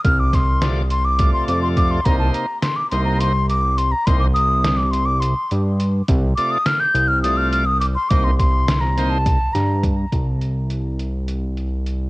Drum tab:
HH |xxxxxxx|xxxxxxx|xxxxxxx|xxxxxxx|
SD |-oo----|--o----|--o----|--o----|
BD |oo--o-o|o------|o------|o------|

HH |xxxxxxx|xxxxxxx|
SD |--oo-o-|-------|
BD |oo--o-o|o------|